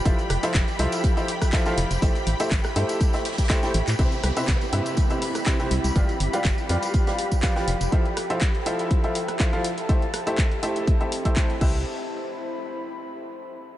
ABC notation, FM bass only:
X:1
M:4/4
L:1/16
Q:"Swing 16ths" 1/4=122
K:C
V:1 name="FM bass" clef=bass
F,,, z F,,, z F,,, z C,, z6 z F,,, F,,, | A,,, z A,,, z A,,, z G,, z6 z A,,, A,, | C,, z C,, z C,, z G,, z6 z C,, C,, | G,,, z G,,, z G,,, z F,, z6 z F,,, F,,, |
z16 | z12 z2 C,,2 | z16 |]